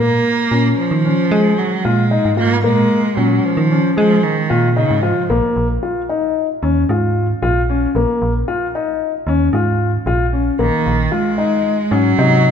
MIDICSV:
0, 0, Header, 1, 4, 480
1, 0, Start_track
1, 0, Key_signature, -5, "minor"
1, 0, Tempo, 530504
1, 1193, Time_signature, 5, 3, 24, 8
1, 11319, End_track
2, 0, Start_track
2, 0, Title_t, "Grand piano"
2, 0, Program_c, 0, 0
2, 0, Note_on_c, 0, 58, 77
2, 309, Note_off_c, 0, 58, 0
2, 467, Note_on_c, 0, 61, 69
2, 794, Note_off_c, 0, 61, 0
2, 952, Note_on_c, 0, 61, 72
2, 1115, Note_off_c, 0, 61, 0
2, 1190, Note_on_c, 0, 68, 83
2, 1517, Note_off_c, 0, 68, 0
2, 1672, Note_on_c, 0, 65, 79
2, 1836, Note_off_c, 0, 65, 0
2, 1910, Note_on_c, 0, 63, 76
2, 2074, Note_off_c, 0, 63, 0
2, 2145, Note_on_c, 0, 65, 74
2, 2312, Note_off_c, 0, 65, 0
2, 2389, Note_on_c, 0, 58, 87
2, 2717, Note_off_c, 0, 58, 0
2, 2870, Note_on_c, 0, 61, 79
2, 3197, Note_off_c, 0, 61, 0
2, 3355, Note_on_c, 0, 61, 78
2, 3519, Note_off_c, 0, 61, 0
2, 3592, Note_on_c, 0, 68, 83
2, 3919, Note_off_c, 0, 68, 0
2, 4071, Note_on_c, 0, 65, 83
2, 4236, Note_off_c, 0, 65, 0
2, 4312, Note_on_c, 0, 63, 77
2, 4477, Note_off_c, 0, 63, 0
2, 4550, Note_on_c, 0, 65, 80
2, 4715, Note_off_c, 0, 65, 0
2, 4793, Note_on_c, 0, 58, 88
2, 5120, Note_off_c, 0, 58, 0
2, 5272, Note_on_c, 0, 65, 68
2, 5437, Note_off_c, 0, 65, 0
2, 5514, Note_on_c, 0, 63, 72
2, 5840, Note_off_c, 0, 63, 0
2, 5994, Note_on_c, 0, 61, 79
2, 6158, Note_off_c, 0, 61, 0
2, 6246, Note_on_c, 0, 65, 71
2, 6568, Note_off_c, 0, 65, 0
2, 6718, Note_on_c, 0, 65, 84
2, 6880, Note_off_c, 0, 65, 0
2, 6963, Note_on_c, 0, 61, 72
2, 7123, Note_off_c, 0, 61, 0
2, 7202, Note_on_c, 0, 58, 79
2, 7525, Note_off_c, 0, 58, 0
2, 7672, Note_on_c, 0, 65, 79
2, 7835, Note_off_c, 0, 65, 0
2, 7918, Note_on_c, 0, 63, 79
2, 8241, Note_off_c, 0, 63, 0
2, 8397, Note_on_c, 0, 61, 85
2, 8559, Note_off_c, 0, 61, 0
2, 8636, Note_on_c, 0, 65, 71
2, 8960, Note_off_c, 0, 65, 0
2, 9112, Note_on_c, 0, 65, 83
2, 9274, Note_off_c, 0, 65, 0
2, 9346, Note_on_c, 0, 61, 70
2, 9511, Note_off_c, 0, 61, 0
2, 9582, Note_on_c, 0, 58, 80
2, 9909, Note_off_c, 0, 58, 0
2, 10059, Note_on_c, 0, 65, 76
2, 10225, Note_off_c, 0, 65, 0
2, 10296, Note_on_c, 0, 63, 78
2, 10625, Note_off_c, 0, 63, 0
2, 10776, Note_on_c, 0, 61, 87
2, 10943, Note_off_c, 0, 61, 0
2, 11028, Note_on_c, 0, 63, 80
2, 11319, Note_off_c, 0, 63, 0
2, 11319, End_track
3, 0, Start_track
3, 0, Title_t, "Cello"
3, 0, Program_c, 1, 42
3, 0, Note_on_c, 1, 58, 104
3, 676, Note_off_c, 1, 58, 0
3, 709, Note_on_c, 1, 53, 96
3, 1431, Note_on_c, 1, 54, 88
3, 1445, Note_off_c, 1, 53, 0
3, 1669, Note_on_c, 1, 56, 90
3, 1683, Note_off_c, 1, 54, 0
3, 2148, Note_off_c, 1, 56, 0
3, 2153, Note_on_c, 1, 58, 95
3, 2378, Note_off_c, 1, 58, 0
3, 2399, Note_on_c, 1, 56, 106
3, 2863, Note_on_c, 1, 54, 89
3, 2876, Note_off_c, 1, 56, 0
3, 3112, Note_on_c, 1, 53, 90
3, 3125, Note_off_c, 1, 54, 0
3, 3585, Note_off_c, 1, 53, 0
3, 3591, Note_on_c, 1, 53, 91
3, 3827, Note_on_c, 1, 51, 87
3, 3841, Note_off_c, 1, 53, 0
3, 4302, Note_off_c, 1, 51, 0
3, 4307, Note_on_c, 1, 49, 84
3, 4548, Note_on_c, 1, 53, 71
3, 4562, Note_off_c, 1, 49, 0
3, 4794, Note_off_c, 1, 53, 0
3, 9592, Note_on_c, 1, 51, 91
3, 10062, Note_on_c, 1, 56, 94
3, 10076, Note_off_c, 1, 51, 0
3, 10783, Note_on_c, 1, 54, 106
3, 10796, Note_off_c, 1, 56, 0
3, 11319, Note_off_c, 1, 54, 0
3, 11319, End_track
4, 0, Start_track
4, 0, Title_t, "FM bass"
4, 0, Program_c, 2, 39
4, 0, Note_on_c, 2, 46, 98
4, 192, Note_off_c, 2, 46, 0
4, 465, Note_on_c, 2, 46, 87
4, 669, Note_off_c, 2, 46, 0
4, 825, Note_on_c, 2, 51, 79
4, 1030, Note_off_c, 2, 51, 0
4, 1189, Note_on_c, 2, 56, 106
4, 1393, Note_off_c, 2, 56, 0
4, 1676, Note_on_c, 2, 46, 86
4, 1978, Note_off_c, 2, 46, 0
4, 2037, Note_on_c, 2, 44, 89
4, 2392, Note_on_c, 2, 46, 99
4, 2406, Note_off_c, 2, 44, 0
4, 2596, Note_off_c, 2, 46, 0
4, 2870, Note_on_c, 2, 46, 81
4, 3075, Note_off_c, 2, 46, 0
4, 3231, Note_on_c, 2, 51, 88
4, 3435, Note_off_c, 2, 51, 0
4, 3599, Note_on_c, 2, 56, 108
4, 3800, Note_off_c, 2, 56, 0
4, 4079, Note_on_c, 2, 46, 92
4, 4381, Note_off_c, 2, 46, 0
4, 4439, Note_on_c, 2, 44, 81
4, 4640, Note_off_c, 2, 44, 0
4, 4795, Note_on_c, 2, 34, 103
4, 4897, Note_off_c, 2, 34, 0
4, 5034, Note_on_c, 2, 34, 91
4, 5237, Note_off_c, 2, 34, 0
4, 5997, Note_on_c, 2, 39, 99
4, 6199, Note_off_c, 2, 39, 0
4, 6237, Note_on_c, 2, 44, 98
4, 6640, Note_off_c, 2, 44, 0
4, 6719, Note_on_c, 2, 34, 103
4, 7120, Note_off_c, 2, 34, 0
4, 7193, Note_on_c, 2, 34, 100
4, 7295, Note_off_c, 2, 34, 0
4, 7436, Note_on_c, 2, 34, 95
4, 7637, Note_off_c, 2, 34, 0
4, 8385, Note_on_c, 2, 39, 100
4, 8590, Note_off_c, 2, 39, 0
4, 8622, Note_on_c, 2, 44, 97
4, 9029, Note_off_c, 2, 44, 0
4, 9103, Note_on_c, 2, 34, 101
4, 9509, Note_off_c, 2, 34, 0
4, 9585, Note_on_c, 2, 34, 93
4, 9688, Note_off_c, 2, 34, 0
4, 9830, Note_on_c, 2, 34, 94
4, 10032, Note_off_c, 2, 34, 0
4, 10780, Note_on_c, 2, 44, 100
4, 10985, Note_off_c, 2, 44, 0
4, 11025, Note_on_c, 2, 48, 104
4, 11319, Note_off_c, 2, 48, 0
4, 11319, End_track
0, 0, End_of_file